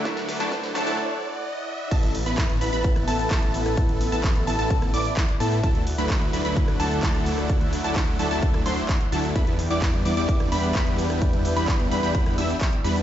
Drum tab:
CC |----------------|x---------------|----------------|----------------|
HH |xxoxxxox--------|xxoxxxoxxxoxxxox|xxoxxxoxxxoxxxox|xxoxxxoxxxoxxxox|
SH |x-xxx-xx--------|x-xxx-xxx-xxx-xx|x-xxx-xxx-xx--xx|x-xxx-xxx-xxx-xx|
CP |----------------|----x-------x---|----x-------x---|----x-------x---|
SD |oooooooo--------|---------r-----r|---------r------|---------r-----r|
BD |o---o-----------|o---o---o---o---|o---o---o---o---|o---o---o---o---|

CC |----------------|----------------|----------------|
HH |xxoxxxoxxxoxxxox|xxoxxxoxxxoxxxox|xxoxxxoxxxoxxxox|
SH |x-xxx-xxx-xxx-xx|x-xxx-xxx-xxx-xx|x-xxx-xxx-xxx-xx|
CP |----x-------x---|----x-------x---|----x-------x---|
SD |---------r------|---------r-----r|---------r------|
BD |o---o---o---o---|o---o---o---o---|o---o---o---o---|